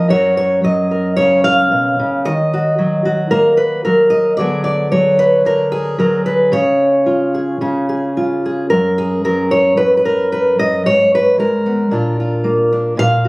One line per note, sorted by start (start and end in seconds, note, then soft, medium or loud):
0.00 0.11 F3 medium
0.00 0.11 A#4 medium
0.09 1.71 F#2 medium
0.09 0.63 F#3 soft
0.09 2.53 F#4 soft
0.09 0.91 A#4 soft
0.09 0.36 C#5 medium
0.37 0.64 C#5 medium
0.64 2.78 F#3 medium
0.64 1.16 D#5 medium
0.91 2.22 A#4 soft
1.17 1.98 C#3 medium
1.17 1.44 C#5 loud
1.44 2.25 F5 loud
1.71 1.98 B2 medium
2.00 2.26 C#3 medium
2.25 4.36 D#3 medium
2.25 3.85 D#5 medium
2.54 3.05 F#4 soft
2.78 3.84 F#3 medium
3.05 4.36 F#4 medium
3.31 4.35 A#3 medium
3.31 3.57 A#4 medium
3.57 3.84 B4 medium
3.85 4.38 F#3 medium
3.85 4.38 A#4 medium
4.10 4.36 D#5 medium
4.37 5.44 D3 medium
4.37 4.90 F#3 medium
4.37 6.53 B3 medium
4.37 5.18 G#4 soft
4.37 4.63 D5 loud
4.64 4.91 D5 medium
4.91 5.97 F#3 medium
4.91 5.71 C#5 medium
5.19 5.45 B4 medium
5.45 6.49 D3 medium
5.45 5.98 A#4 medium
5.72 6.52 G#4 medium
5.98 6.52 F#3 medium
5.98 6.25 A#4 medium
6.26 6.52 B4 medium
6.52 7.60 C#3 medium
6.52 8.71 C#5 medium
7.06 8.16 F4 medium
7.34 7.60 G#4 soft
7.61 8.71 C#3 medium
7.61 7.88 G#4 soft
7.89 8.44 G#4 soft
8.17 8.68 F4 medium
8.45 8.69 G#4 soft
8.70 9.76 F#2 medium
8.70 9.24 A#4 medium
8.98 9.51 G#4 medium
9.24 11.38 F#3 medium
9.24 9.78 A#4 medium
9.51 9.77 C#5 medium
9.77 10.58 F#2 medium
9.77 9.96 B4 medium
9.97 10.31 B4 medium
10.05 10.86 A#4 medium
10.32 10.59 B4 medium
10.59 10.85 F#2 medium
10.59 10.86 D#5 loud
10.86 11.89 G#2 medium
10.86 11.12 C#5 loud
11.15 11.39 B4 medium
11.38 11.88 G#3 soft
11.38 12.72 A#4 medium
11.66 11.91 B3 soft
11.91 12.94 A#2 medium
11.91 12.71 D4 soft
11.91 12.19 F4 soft
12.20 12.95 F4 soft
12.44 12.94 A#3 medium
12.73 12.95 D4 soft
12.97 13.28 A#2 medium
12.97 13.28 F5 loud
13.25 13.28 F#4 soft